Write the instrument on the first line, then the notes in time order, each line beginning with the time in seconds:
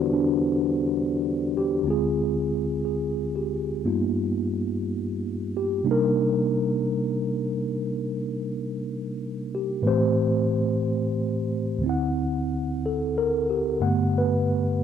tine electric piano
Already playing: E2 D3 E3 G3 B3 D4 E4 F#4 G4 A4 B4 C5 F#5
0.13 D4
1.57 G4
1.83 D2 D3 G#3 C4
1.88 F4 G#4
2.85 G#4
3.36 G4
3.85 G2 G3 A#3 B3 D#4 F4
5.57 G4
5.84 C3 G3 A#3 D4 D#4
5.91 A#4
9.55 G4
9.82 A2 E3 A3 B4
9.87 C4 G4 C5
11.78 D2 D3
11.83 C4 E4
11.89 F#5
12.86 A4
13.18 A#4
13.50 G4
13.80 G2 D3 A3 B3 F#5
14.18 B4